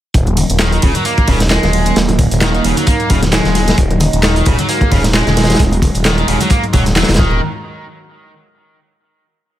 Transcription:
0.14 D#1 F#3 A#3 D#4, kick, closed hi-hat
0.27 closed hi-hat, low conga
0.37 closed hi-hat, ride, high conga
0.50 D#1, closed hi-hat, muted conga
0.59 D#3, snare, clap, closed hi-hat
0.72 D#3, closed hi-hat
0.82 D#1 C#3, kick, closed hi-hat, ride, muted conga
0.95 F#3, closed hi-hat, high conga
1.05 A#3, closed hi-hat
1.18 kick, closed hi-hat
1.28 D#1 C#3, kick, open hi-hat, ride, muted conga
1.40 snare, closed hi-hat
1.50 G#3, snare, clap, closed hi-hat
1.63 D#1, snare, closed hi-hat, muted conga, high conga
1.73 ride
1.86 closed hi-hat
1.96 D#1, snare, closed hi-hat
2.08 closed hi-hat, muted conga, low conga
2.19 kick, closed hi-hat, ride, high conga
2.31 D#1, closed hi-hat
2.41 D#3, snare, clap, closed hi-hat, muted conga
2.54 D#3, closed hi-hat
2.64 D#1 C#3, closed hi-hat, ride
2.77 F#3, closed hi-hat, high conga
2.87 A#3, kick, closed hi-hat, muted conga
3.00 closed hi-hat
3.10 D#1 C#3, kick, closed hi-hat, ride
3.23 snare, closed hi-hat, muted conga
3.32 G#3, snare, clap, closed hi-hat
3.44 D#1, snare, closed hi-hat, high conga
3.55 snare, closed hi-hat, ride
3.68 snare, closed hi-hat, muted conga, low conga
3.78 D#1 G#3, kick, closed hi-hat
3.91 closed hi-hat, low conga
4.00 closed hi-hat, ride, muted conga, high conga
4.13 D#1, closed hi-hat
4.23 D#3, snare, clap, closed hi-hat
4.36 D#3, closed hi-hat
4.45 D#1 C#3, kick, closed hi-hat, ride, muted conga
4.59 F#3, closed hi-hat, high conga
4.69 A#3, closed hi-hat
4.81 kick, closed hi-hat, muted conga
4.91 D#1 C#3, kick, open hi-hat, ride
5.04 snare, closed hi-hat
5.14 G#3, snare, clap, closed hi-hat
5.27 D#1, snare, closed hi-hat, muted conga, high conga
5.37 snare, closed hi-hat, ride
5.43 snare, closed hi-hat
5.50 snare, closed hi-hat
5.54 snare, closed hi-hat
5.59 D#1, kick, closed hi-hat, muted conga
5.71 closed hi-hat, low conga
5.82 kick, closed hi-hat, ride, high conga
5.94 D#1, closed hi-hat
6.05 D#3, snare, clap, closed hi-hat, muted conga
6.18 D#3, closed hi-hat
6.28 D#1 C#3, closed hi-hat, ride
6.40 F#3, closed hi-hat, muted conga, high conga
6.50 A#3, kick, closed hi-hat
6.64 closed hi-hat
6.73 D#1 F#3, kick, closed hi-hat, ride
6.86 snare, closed hi-hat, muted conga
6.96 F#3, snare, clap, closed hi-hat
7.03 snare, closed hi-hat
7.08 D#1, snare, closed hi-hat, high conga
7.14 snare, closed hi-hat
7.18 D#1 D#3 D#4 F#4 A#4 A#5, kick, muted conga, low conga
7.31 low conga

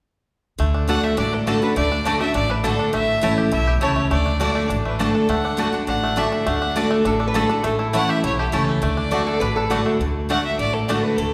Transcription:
0.58 D2 D3 A3
0.74 D4
0.88 D3 A3 D4 F#4 D5 F#5 A5
1.04 A3 E5
1.17 A1 A2 D4 D5
1.33 D4 A4
1.47 D3 A3 D4 F#4 A4 D5 A5
1.62 D4 F#4 B4
1.76 D2 D3 A3 D5
1.92 D4
2.05 D3 A3 D4 F#4 D5 A5
2.20 A3 D4 F#4 E5
2.34 A1 A2 D4 D5
2.50 D4 B4
2.64 D3 A3 D4 F#4 A4 D5 A5
2.79 D4
2.93 A1 A2 A3 E5
3.21 A1 E3 A3 C#4 E4 C#5 A5
3.38 G4
3.52 B1 B2 E4 E5
3.67 G4
3.81 C#2 C#3 A3 C#4 E4 C#5 A5
3.96 A3
4.11 D2 D3 A3 D5
4.26 D4
4.40 D3 A3 D4 F#4 D5 A5
4.55 A3
4.70 A1 A2 D4
4.85 A3 B4
4.99 D3 A3 D4 F#4 A4 D5 A5
5.15 D4
5.28 D2 D3 A3 F#5
5.45 D4
5.57 D3 A3 D4 F#4 D5 A5
5.73 D4 F#4
5.87 A1 A2 D4 F#5
6.03 A3
6.16 D3 A3 D4 F#4 D5 E5 A5
6.32 D4
6.46 D2 D3 A3 F#5
6.62 D4
6.76 D3 A3 D4 F#4 D5 A5
6.91 A3
7.05 A1 A2 D4 A4
7.20 D4
7.27 B4
7.34 D3 A3 D4 F#4 A4 D5 A5
7.49 D4 F#4
7.64 A1 A2 A3 A4
7.79 E4
7.93 E3 A3 C#4 E4 C#5 F#5 A5
8.09 G4 E5
8.23 B1 E2 E4 C#5
8.39 G4 A4
8.52 C#2 E3 A3 C#4 E4 A4 C#5 A5
8.69 A3
8.82 D2 D3 A3 D5
8.97 D4
9.11 D3 A3 D4 F#4 D5 A5
9.27 D4 A4
9.40 A1 A2 D4 B4
9.56 D4 A4
9.70 D3 A3 D4 F#4 D5 A5
9.86 A3
10.00 D2 D3
10.29 D3 A3 D4 F#4 D5 F#5 A5
10.45 E5
10.59 A1 A2 D5
10.73 A4
10.88 D3 A3 D4 F#4 A4 D5 A5
11.03 B4
11.17 D2 D3 A4

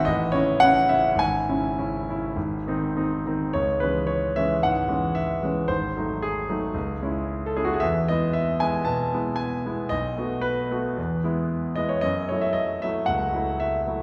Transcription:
0.05 A1 D#5
0.32 C#3 C#4 E4 C#5
0.60 C#3 C#4 E4 F#5
0.89 C#3 C#4 E4 E5
1.15 G#1 G#5
1.49 C#3 C#4 E4
1.79 C#3 C#4 E4
2.09 C#3 C#4 E4
2.36 G#1
2.67 D#3 C4 D#4
2.97 D#3 C4 D#4
3.26 D#3 C4 D#4
3.53 C#2 C#5
3.80 E3 G#3 C#4 B4
4.07 C#5
4.36 E3 G#3 C#4 E5
4.63 G#2 F#5
4.88 E3 G#3 C#4
5.15 E5
5.43 E3 G#3 C#4
5.68 G#1 C5
5.96 F#3 A3 D#4
6.22 G#4
6.49 F#3 A3 D#4
6.74 C#2
7.02 G#3 C#4 E4
7.46 A4
7.56 G#3 C#4 E4 G#4
7.65 F#4
7.74 G#4
7.80 E2 E5
8.08 G#3 B3 E4 D#5
8.33 E5
8.60 G#3 B3 E4 G#5
8.85 B2 A5
9.14 G#3 B3 E4
9.36 G#5
9.66 G#3 B3 E4
9.89 B1 D#5
10.18 A3 B3 F#4
10.41 B4
10.71 A3 B3 F#4
10.97 E2
11.24 G#3 B3 E4
11.76 G#3 B3 E4 D#5
11.89 C#5
12.01 F#2 D#5
12.29 F#3 A3 E4 C#5
12.41 E5
12.53 D#5
12.82 F#3 A3 E4 E5
13.06 C#2 F#5
13.33 F#3 A3 E4
13.60 E5
13.86 F#3 A3 E4

